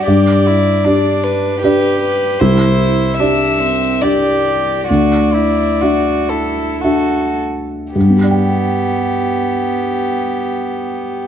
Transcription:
0.03 G4 D5
0.08 G2
0.47 E4
0.85 D4 G4 D5
1.23 B4
1.62 D4 G4 B4 D5
2.02 B4
2.39 C2 E4 C5
3.18 D4 G4 D5 E5
3.61 C4
4.02 D4 G4 D5
4.88 D2 F#4 D5
5.34 E4
5.81 D4 F#4 E5
6.29 E4 A4
6.81 D4 F#4 A4 E5
7.94 G2 B3 G4
8.02 G3
8.09 B3
8.17 G4
8.23 D5
8.30 G5

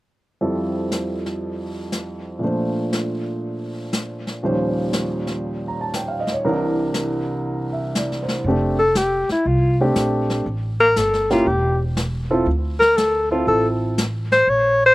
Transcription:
0.41 F2 F3 G3 E4 A4, brush sweep
0.91 snare, hi-hat pedal
1.26 snare
1.42 brush sweep
1.92 snare, hi-hat pedal
2.39 A#2 F3 A3, brush sweep
2.43 D4 C5
2.92 snare, hi-hat pedal
3.42 brush sweep
3.93 snare, hi-hat pedal
4.27 snare
4.43 D#2 A#2 F3 G3 C#4 C5, brush sweep
4.93 snare, hi-hat pedal
5.27 snare
5.44 brush sweep
5.68 A#5
5.81 A5
5.93 G5, snare, hi-hat pedal
6.08 F5
6.20 D#5
6.27 snare
6.32 C#5
6.44 C2 C3 E3 D4 A#4, brush sweep
6.94 snare, hi-hat pedal
7.45 brush sweep
7.72 E5
7.95 D5, snare, hi-hat pedal
8.12 snare
8.23 C5
8.28 snare
8.44 F1 A3 C4 D4, brush sweep
8.48 G4
8.79 A4
8.95 G4, snare, hi-hat pedal
9.29 E4, muted upright bass stroke, snare
9.45 C2 F4, brush sweep
9.81 A3 C4 D4 G4
9.95 A#1, snare, hi-hat pedal
10.30 snare
10.46 A1, brush sweep
10.80 A#4
10.96 G1 A4, snare, hi-hat pedal
11.14 snare
11.30 A#3 C#4 E4 F4 G4, snare
11.46 E1 G4, brush sweep
11.97 snare, hi-hat pedal
12.31 C4 E4 F4 A4
12.46 D2, brush sweep
12.80 A#4, snare
12.97 A4, snare, hi-hat pedal
13.31 C4 E4 F4 A4
13.47 A1 A4, brush sweep
13.98 snare, hi-hat pedal
14.32 C5, snare
14.47 A#1 C#5, brush sweep
14.86 C5

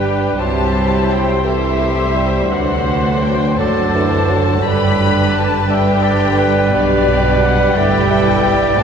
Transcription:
Already playing: G1 G2 G3 D4 G4 B4 G5
0.39 C2 F#3 G3 E4 G4 C5 A5
1.10 G5
1.44 E3 G3 E4 G4 A4 C5 E5
1.79 A3 G4
2.15 G3 C5
2.50 D2 D3 F#3 D4 F#4 B4 C5 F#5
3.21 G5
3.57 F#1 F#2 D3 F#3 D4 F#4 A4 C5 D5 A5
3.95 E3
4.30 F#3
4.63 G1 G2 D3 G3 D4 G4 B4 B5
5.34 A5
5.69 D3 G3 D4 G4 B4 E5 G5
6.03 D5
6.38 B4
6.73 B1 B2 G3 D4 G4 B4 D5
7.41 F#5
7.76 G1 G2 A3 E4 G4 B4 D5 G5
8.10 G3 A4
8.44 G3 G4
8.79 A3 D4

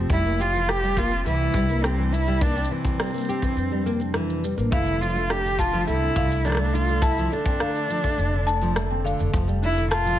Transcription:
Already playing: G4 A4
0.10 F1 C3 G3 E4, kick, open hi-hat, shaker
0.25 A#3, open hi-hat, shaker
0.27 open hi-hat
0.30 open hi-hat
0.32 open hi-hat
0.36 G3 G4, open hi-hat
0.40 F4, shaker
0.54 E3, open hi-hat, shaker
0.69 G4, cross-stick, open hi-hat, shaker
0.80 G3 D4
0.84 shaker
0.97 A#3 F4, kick, shaker
1.12 C4, open hi-hat, shaker
1.25 C2 E3 E4, open hi-hat, shaker
1.54 C2 G3, kick, shaker
1.69 A#3, open hi-hat, shaker
1.84 C4 G4, cross-stick, open hi-hat, shaker
1.98 E3
2.13 E4, shaker
2.27 G3, open hi-hat, shaker
2.41 A#3 D4, kick, open hi-hat, shaker
2.56 C4, open hi-hat, shaker
2.65 shaker
2.71 E3 C4
2.85 kick, open hi-hat, shaker
3.00 G3, cross-stick, open hi-hat, shaker
3.04 open hi-hat
3.07 open hi-hat
3.11 A#3, open hi-hat
3.14 open hi-hat, shaker
3.18 open hi-hat, shaker
3.20 open hi-hat, shaker
3.22 open hi-hat, shaker
3.25 shaker
3.27 G4, shaker
3.29 shaker
3.42 E3, kick, open hi-hat, shaker
3.56 F2, open hi-hat, shaker
3.72 G3
3.86 A#3, shaker
4.00 C4, open hi-hat, shaker
4.14 E3, cross-stick, open hi-hat, shaker
4.30 shaker
4.44 G3, shaker
4.58 A1 A#3, open hi-hat, shaker
4.72 F1 D3 E4 F5, kick, open hi-hat, shaker
4.86 open hi-hat, shaker
5.01 F3 F4, shaker
5.10 A3, shaker
5.16 A3, open hi-hat
5.30 D4 G4, cross-stick, open hi-hat, shaker
5.44 D3, shaker
5.59 F4 A4 A5, kick, shaker
5.73 F3, open hi-hat, shaker
5.87 C2 A3 E4, open hi-hat, shaker
6.02 C4
6.16 C2 D3 F5, kick
6.31 open hi-hat, shaker
6.45 F3 D4, cross-stick, open hi-hat, shaker
6.47 cross-stick
6.50 cross-stick
6.52 cross-stick
6.55 cross-stick
6.57 A3, cross-stick
6.74 D4 F4, shaker
6.88 D3, open hi-hat, shaker
7.02 E4 A5, kick, open hi-hat, shaker
7.17 F3, open hi-hat, shaker
7.32 A3 D4, shaker
7.46 C4, kick, open hi-hat, shaker
7.60 D3 F5, cross-stick, open hi-hat, shaker
7.76 shaker
7.90 F3, shaker
8.04 A3, kick, open hi-hat, shaker
8.18 F1 D4, open hi-hat, shaker
8.33 D3
8.47 A5, shaker
8.62 F3, open hi-hat, shaker
8.76 A3, cross-stick, open hi-hat, shaker
8.91 C4
9.04 D3 F5, shaker
9.19 F1, open hi-hat, shaker
9.34 F1 A#2 F3, kick, open hi-hat, shaker
9.48 G3 C4, open hi-hat, shaker
9.55 D4
9.62 F3 D4 E4, shaker
9.77 D3, open hi-hat, shaker
9.91 F4 A5, cross-stick, open hi-hat, shaker
10.06 F3, shaker

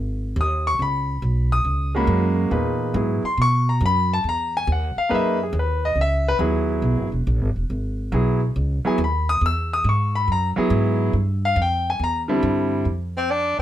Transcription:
Already playing: G#1
0.36 D#2
0.41 D#6
0.67 C#6
0.79 C#2 B5
1.22 B1
1.52 D#6
1.65 C#2
1.95 G#3 A#3 C#4 F#4 B5
2.07 F#2
2.51 E2 A#2 D#4 G#4 B4
2.94 G#2 F#3 B3 E4 G#4
3.23 C6, muted upright bass stroke
3.37 B2
3.42 C#6
3.69 A#5
3.81 F#2
3.86 B5
4.14 A5
4.24 E2
4.29 A#5
4.57 G#5
4.67 D#2
4.72 F#5
4.96 F5, muted upright bass stroke
5.09 F#2 A#3 D#4 G#4 B4
5.15 E5
5.43 G#4
5.53 D#2
5.59 B4
5.85 D#5
5.95 C#2
6.01 E5
6.28 B4
6.39 D#2 F#3 B3 E4 G#4
6.82 B1
6.97 G#1
7.12 E1
7.27 A#1
7.41 G#1
7.56 E1
7.70 G#1
8.12 B1 F#3 B3 E4 G#4
8.56 C#2
8.85 F#3 B3 E4 G#4 G#5, muted upright bass stroke
8.98 D#2
9.04 B5
9.29 D#6
9.41 E2
9.46 E6
9.73 D#6
9.84 G#2
9.89 C#6
10.15 B5
10.28 F#2
10.32 A#5
10.56 F#3 B3 E4 G#4, muted upright bass stroke
10.70 G#2
11.13 G2
11.45 F5
11.56 F2
11.62 G5
11.90 G#5
11.99 E2
12.04 A#5
12.28 D3 G3 C4 E4
12.43 G2
12.85 F2
13.17 C4
13.31 D4
13.58 D#2

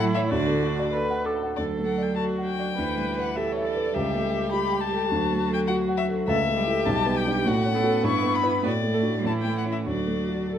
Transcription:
Already playing: A2 A3 E4
0.00 F#3 E4
0.14 E3 C#5 E5
0.29 D2 D3 F#4 D5
0.48 A3
0.63 F#4
0.79 D5
0.93 A4 B4
1.10 F#5
1.25 A4 D6
1.43 F#5
1.56 D2 F#3 A4 D5
1.78 A3
1.85 F#5
1.98 D5
2.02 G5
2.15 F#4 A4 A5
2.38 F#5
2.45 G5
2.59 D5
2.77 D2 E3 B4
2.97 G3
3.18 B4 F#5
3.35 G4 A4 E5
3.52 C#5
3.57 E5
3.65 D5
3.76 B4
3.94 C#2 G3 G4 E5
4.15 A3
4.34 A4
4.51 G4 B5
4.73 G5
4.80 A5
4.92 A4
5.11 D2 F#3 F#4
5.31 A3
5.50 A4 G5
5.67 F#4 F#5
5.89 F#5
5.97 E5
6.08 A4
6.27 C#2 A3 A4 E5
6.47 A3
6.57 G3 G4
6.67 E4 A4
6.85 B1 G3 A5
7.06 B3
7.17 G5
7.26 D4 G4
7.45 A2 A3 F#4 F#5
7.65 C#4
7.74 B3 A4
7.83 F#4 A4
8.03 G2 E4 C#6
8.23 B3
8.35 B5
8.42 E4 B4
8.63 A2 B3 F#4 D5
8.84 A3
8.93 A3 A4
9.03 D4 F#4
9.24 A2 E3 E4 A5
9.41 A3 G5
9.58 F#5
9.65 C#4 E4
9.72 E5
9.86 D2 F#3 F#4 D5
10.07 A3
10.29 F#4
10.49 A4

